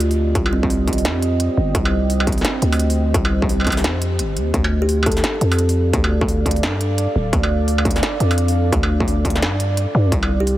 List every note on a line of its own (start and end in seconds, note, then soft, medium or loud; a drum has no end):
0.00 0.34 D2 medium
0.00 4.50 C4 medium
0.00 4.50 G4 medium
0.00 1.71 D5 medium
0.00 4.50 D#5 medium
0.00 closed hi-hat medium
0.11 open hi-hat medium
0.35 1.07 C2 loud
0.35 kick loud
0.35 closed hi-hat medium
0.46 struck metal medium
0.53 0.59 C4 medium
0.63 0.68 C4 medium
0.63 kick loud
0.70 open hi-hat medium
0.88 kick medium
0.88 closed hi-hat soft
0.93 closed hi-hat medium
0.98 open hi-hat medium
1.05 1.49 F2 medium
1.05 snare loud
1.05 closed hi-hat medium
1.22 closed hi-hat medium
1.40 closed hi-hat medium
1.57 1.74 G1 loud
1.75 2.44 C2 loud
1.75 4.51 C5 medium
1.75 kick loud
1.75 closed hi-hat medium
1.85 struck metal medium
2.10 open hi-hat medium
2.20 struck metal medium
2.27 kick loud
2.27 closed hi-hat medium
2.32 closed hi-hat medium
2.38 snare soft
2.38 open hi-hat medium
2.45 snare loud
2.45 closed hi-hat medium
2.62 3.14 D2 medium
2.62 closed hi-hat medium
2.72 open hi-hat medium
2.72 struck metal medium
2.80 closed hi-hat medium
2.90 open hi-hat medium
3.14 3.86 C2 loud
3.14 kick loud
3.14 closed hi-hat medium
3.25 struck metal medium
3.42 kick loud
3.49 open hi-hat medium
3.60 struck metal soft
3.65 kick medium
3.65 closed hi-hat medium
3.65 struck metal soft
3.67 struck metal soft
3.70 closed hi-hat medium
3.70 struck metal medium
3.73 struck metal medium
3.77 snare soft
3.77 open hi-hat medium
3.84 4.21 F2 medium
3.84 snare loud
3.84 closed hi-hat medium
4.02 closed hi-hat medium
4.19 4.38 G1 medium
4.19 closed hi-hat medium
4.37 4.53 D#2 medium
4.37 closed hi-hat soft
4.54 5.23 D2 loud
4.54 10.08 D4 medium
4.54 10.08 A4 medium
4.54 10.58 D5 medium
4.54 10.08 F5 medium
4.54 kick loud
4.54 closed hi-hat medium
4.64 struck metal medium
4.82 5.02 G4 medium
4.89 open hi-hat medium
5.03 5.34 A4 medium
5.03 kick loud
5.03 closed hi-hat medium
5.03 struck metal medium
5.12 closed hi-hat medium
5.17 snare soft
5.17 open hi-hat medium
5.24 snare loud
5.24 closed hi-hat medium
5.41 5.93 F2 medium
5.41 closed hi-hat medium
5.52 open hi-hat medium
5.52 struck metal medium
5.59 closed hi-hat medium
5.69 open hi-hat medium
5.93 6.65 D2 loud
5.93 kick loud
5.93 closed hi-hat medium
6.04 struck metal medium
6.21 kick loud
6.28 open hi-hat medium
6.46 kick medium
6.46 closed hi-hat medium
6.51 closed hi-hat medium
6.56 open hi-hat medium
6.63 7.07 G2 medium
6.63 snare loud
6.63 closed hi-hat medium
6.81 closed hi-hat medium
6.98 closed hi-hat medium
7.16 7.32 D1 loud
7.33 8.02 D2 loud
7.33 kick loud
7.33 closed hi-hat medium
7.43 struck metal medium
7.68 open hi-hat medium
7.78 struck metal medium
7.85 kick loud
7.85 closed hi-hat medium
7.91 closed hi-hat medium
7.96 snare soft
7.96 open hi-hat medium
8.03 snare loud
8.03 closed hi-hat medium
8.20 8.72 F2 medium
8.20 closed hi-hat medium
8.31 open hi-hat medium
8.31 struck metal medium
8.38 closed hi-hat medium
8.48 open hi-hat medium
8.72 9.44 D2 loud
8.72 kick loud
8.72 closed hi-hat medium
8.83 struck metal medium
9.00 kick loud
9.08 open hi-hat medium
9.25 kick medium
9.25 closed hi-hat soft
9.30 closed hi-hat medium
9.36 snare soft
9.36 open hi-hat medium
9.42 9.86 G2 medium
9.42 snare loud
9.42 closed hi-hat medium
9.60 closed hi-hat medium
9.77 closed hi-hat medium
9.95 10.07 G2 medium
10.05 10.12 F2 loud
10.12 10.58 C2 loud
10.12 10.58 C4 medium
10.12 10.58 G4 medium
10.12 10.58 D#5 medium
10.12 kick loud
10.12 closed hi-hat medium
10.23 struck metal medium
10.40 10.58 G4 medium
10.47 open hi-hat medium